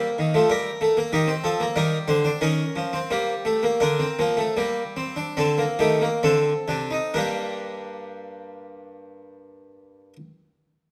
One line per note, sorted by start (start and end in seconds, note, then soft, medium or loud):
0.00 0.33 A#3 medium
0.00 0.46 A4 medium
0.18 0.34 D#3 medium
0.34 0.50 F3 medium
0.34 0.49 A3 medium
0.50 0.69 G3 medium
0.50 1.10 A#4 medium
0.81 0.96 A3 medium
0.97 1.12 A#3 medium
1.13 1.32 D#3 medium
1.13 1.28 D#4 loud
1.13 1.32 G4 medium
1.27 1.47 C4 medium
1.44 1.64 F3 medium
1.44 1.64 A4 medium
1.60 1.76 A#3 medium
1.76 1.96 D#3 medium
1.76 2.24 G3 medium
1.76 1.96 A#4 medium
2.08 2.29 D3 medium
2.08 2.29 C5 medium
2.25 2.41 D4 loud
2.41 2.62 D#3 medium
2.41 2.91 C#4 medium
2.41 3.78 A#4 medium
2.76 2.97 F3 medium
2.93 3.10 C4 medium
3.11 3.80 G3 loud
3.11 3.32 A#3 loud
3.45 3.63 A3 loud
3.63 3.81 A#3 medium
3.80 4.04 D3 medium
3.80 3.99 D4 medium
3.80 5.32 A#4 medium
3.99 4.18 C4 medium
4.19 4.43 F3 medium
4.19 4.37 A#3 medium
4.37 4.56 A3 medium
4.57 5.34 G3 medium
4.57 4.81 A#3 medium
4.97 5.16 C4 medium
5.16 5.36 D4 medium
5.37 5.63 D3 medium
5.37 5.57 C4 medium
5.37 5.63 A4 medium
5.58 5.78 A#3 medium
5.79 6.06 D#3 medium
5.79 6.00 A3 medium
5.79 6.06 G4 medium
6.01 6.22 A#3 medium
6.23 6.51 D3 medium
6.23 6.51 C4 medium
6.23 7.12 A4 medium
6.68 6.97 C3 medium
6.68 6.90 D4 medium
6.91 7.14 D#4 medium
7.14 10.13 G2 medium
7.14 10.16 G3 medium
7.14 10.16 A#3 medium
7.14 10.14 D4 medium
7.14 10.13 A#4 medium